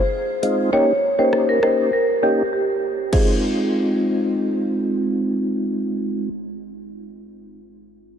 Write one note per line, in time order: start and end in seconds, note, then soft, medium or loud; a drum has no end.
0.43 0.70 G#3 medium
0.43 0.71 C4 medium
0.43 0.71 D#4 medium
0.43 0.71 F4 medium
0.43 closed hi-hat medium
0.72 0.93 A#3 medium
0.72 0.93 C#4 medium
0.72 0.93 D#4 medium
0.72 0.93 G4 loud
0.72 0.83 C#5 loud
1.19 1.59 A#3 medium
1.19 1.59 C#4 medium
1.19 1.60 D#4 medium
1.19 1.60 G4 medium
1.19 1.28 C5 medium
1.33 cross-stick medium
1.49 1.58 A#4 medium
1.63 1.91 A#3 medium
1.63 1.91 C#4 medium
1.63 1.91 D#4 medium
1.63 1.91 G4 medium
1.63 1.74 C5 medium
1.63 cross-stick medium
1.93 2.04 A#4 medium
2.23 2.43 A#3 medium
2.23 2.43 C#4 medium
2.23 2.43 D#4 medium
2.23 2.34 G4 medium
2.23 2.43 G4 medium
2.53 2.96 G4 medium
3.12 6.29 G#3 medium
3.12 6.29 C4 medium
3.12 6.29 D#4 medium
3.12 6.29 F4 medium
3.12 4.89 G#4 medium
3.12 kick loud
3.12 crash medium